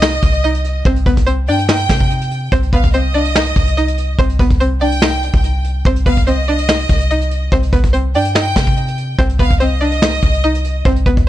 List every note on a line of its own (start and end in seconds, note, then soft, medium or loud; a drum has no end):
0.00 0.19 C2 loud
0.00 0.41 D#4 medium
0.00 0.81 D#5 medium
0.00 0.41 D#5 loud
0.00 snare loud
0.13 closed hi-hat medium
0.23 0.83 C2 loud
0.23 kick loud
0.23 closed hi-hat medium
0.34 closed hi-hat medium
0.44 0.83 D#4 medium
0.44 0.83 D#5 medium
0.44 closed hi-hat medium
0.55 closed hi-hat medium
0.64 closed hi-hat medium
0.85 1.05 C2 loud
0.85 1.04 C4 medium
0.85 1.04 C5 medium
0.85 kick loud
0.85 closed hi-hat medium
0.96 closed hi-hat medium
1.06 1.49 C2 loud
1.06 1.25 B3 medium
1.06 1.24 B4 medium
1.06 kick medium
1.06 closed hi-hat medium
1.17 kick medium
1.17 closed hi-hat medium
1.26 1.45 C4 medium
1.26 1.45 C5 medium
1.26 closed hi-hat medium
1.48 1.87 G2 loud
1.48 1.67 D4 medium
1.48 1.66 D5 medium
1.48 1.68 G5 medium
1.48 open hi-hat medium
1.59 closed hi-hat medium
1.69 2.48 D#4 medium
1.69 2.48 D#5 medium
1.69 2.08 G5 loud
1.69 snare loud
1.79 closed hi-hat medium
1.89 2.49 C3 loud
1.89 kick medium
1.89 snare loud
2.00 kick loud
2.00 closed hi-hat medium
2.10 closed hi-hat medium
2.21 closed hi-hat medium
2.31 closed hi-hat medium
2.52 2.72 C2 loud
2.52 2.71 C4 medium
2.52 2.70 C5 medium
2.52 kick loud
2.52 closed hi-hat medium
2.63 closed hi-hat medium
2.73 2.83 C2 loud
2.73 2.92 B3 medium
2.73 2.91 B4 medium
2.73 2.93 F5 medium
2.73 kick loud
2.73 closed hi-hat medium
2.84 3.53 C2 loud
2.84 kick medium
2.84 closed hi-hat medium
2.93 3.12 C4 medium
2.93 3.12 C5 medium
2.93 4.15 D#5 medium
2.93 closed hi-hat medium
3.14 3.33 D4 medium
3.14 3.33 D5 medium
3.14 closed hi-hat soft
3.25 closed hi-hat medium
3.35 3.75 D#4 medium
3.35 3.75 D#5 loud
3.35 snare loud
3.46 closed hi-hat medium
3.56 4.16 C2 loud
3.56 kick loud
3.56 closed hi-hat medium
3.67 closed hi-hat medium
3.77 4.17 D#4 medium
3.77 4.16 D#5 medium
3.77 closed hi-hat medium
3.88 closed hi-hat medium
3.98 closed hi-hat medium
4.19 4.39 C2 loud
4.19 4.37 C4 medium
4.19 4.37 C5 medium
4.19 kick loud
4.19 closed hi-hat medium
4.29 closed hi-hat medium
4.39 4.50 C2 loud
4.39 4.58 B3 medium
4.39 4.58 B4 medium
4.39 kick medium
4.39 closed hi-hat medium
4.50 5.30 C2 loud
4.50 kick medium
4.50 closed hi-hat medium
4.60 4.79 C4 medium
4.60 4.78 C5 medium
4.60 closed hi-hat medium
4.81 5.00 D4 medium
4.81 4.99 D5 medium
4.81 5.40 G5 medium
4.81 closed hi-hat soft
4.92 closed hi-hat medium
5.02 5.82 D#4 medium
5.02 5.81 D#5 medium
5.02 snare loud
5.12 closed hi-hat medium
5.23 closed hi-hat medium
5.34 5.83 C2 loud
5.34 kick loud
5.34 closed hi-hat medium
5.44 closed hi-hat medium
5.64 closed hi-hat medium
5.85 6.05 C2 loud
5.85 6.04 C4 medium
5.85 6.04 C5 loud
5.85 kick loud
5.85 closed hi-hat medium
5.96 closed hi-hat medium
6.06 6.86 C2 loud
6.06 6.25 B3 medium
6.06 6.24 B4 medium
6.06 6.26 F5 medium
6.06 kick medium
6.06 closed hi-hat medium
6.17 kick medium
6.17 closed hi-hat medium
6.27 6.45 C4 medium
6.27 6.45 C5 medium
6.27 7.48 D#5 medium
6.27 closed hi-hat medium
6.48 6.67 D4 medium
6.48 6.66 D5 medium
6.48 closed hi-hat soft
6.58 closed hi-hat medium
6.69 7.08 D#4 medium
6.69 7.08 D#5 loud
6.69 snare loud
6.79 closed hi-hat medium
6.89 7.49 C2 loud
6.89 kick medium
6.89 closed hi-hat medium
7.00 closed hi-hat medium
7.10 7.50 D#4 medium
7.10 7.50 D#5 medium
7.10 closed hi-hat medium
7.21 closed hi-hat medium
7.31 closed hi-hat medium
7.52 7.72 C2 loud
7.52 7.71 C4 medium
7.52 7.70 C5 medium
7.52 kick loud
7.52 closed hi-hat medium
7.63 closed hi-hat medium
7.73 8.16 C2 loud
7.73 7.91 B3 medium
7.73 7.91 B4 medium
7.73 kick loud
7.73 closed hi-hat medium
7.84 kick medium
7.84 closed hi-hat medium
7.93 8.12 C4 medium
7.93 8.11 C5 medium
7.93 closed hi-hat medium
8.14 8.54 G2 loud
8.14 8.33 D4 medium
8.14 8.33 D5 medium
8.14 8.34 G5 medium
8.14 open hi-hat medium
8.25 closed hi-hat medium
8.35 9.15 D#4 medium
8.35 9.14 D#5 medium
8.35 8.74 G5 loud
8.35 snare loud
8.46 closed hi-hat medium
8.56 9.16 C3 loud
8.56 kick loud
8.56 snare loud
8.67 kick loud
8.67 closed hi-hat medium
8.77 closed hi-hat medium
8.88 closed hi-hat medium
8.98 closed hi-hat medium
9.19 9.39 C2 loud
9.19 9.37 C4 medium
9.19 9.37 C5 medium
9.19 kick loud
9.19 closed hi-hat medium
9.29 closed hi-hat medium
9.39 9.50 C2 loud
9.39 9.58 B3 medium
9.39 9.58 B4 medium
9.39 9.59 F5 medium
9.39 kick medium
9.39 closed hi-hat medium
9.50 10.20 C2 loud
9.50 kick medium
9.50 closed hi-hat medium
9.60 9.79 C4 medium
9.60 9.78 C5 medium
9.60 10.81 D#5 medium
9.60 closed hi-hat medium
9.81 10.00 D4 medium
9.81 9.99 D5 medium
9.81 closed hi-hat soft
9.92 closed hi-hat medium
10.02 10.42 D#4 medium
10.02 10.41 D#5 loud
10.02 snare loud
10.13 closed hi-hat medium
10.23 10.83 C2 loud
10.23 kick loud
10.23 closed hi-hat medium
10.34 closed hi-hat medium
10.44 10.83 D#4 medium
10.44 10.83 D#5 medium
10.44 closed hi-hat medium
10.55 closed hi-hat medium
10.64 closed hi-hat medium
10.85 11.05 C2 loud
10.85 11.04 C4 medium
10.85 11.04 C5 medium
10.85 kick loud
10.85 closed hi-hat medium
10.96 closed hi-hat medium
11.06 11.17 C2 loud
11.06 11.25 B3 medium
11.06 11.24 B4 medium
11.06 kick loud
11.06 closed hi-hat medium
11.17 11.29 C2 loud
11.17 kick medium
11.17 closed hi-hat medium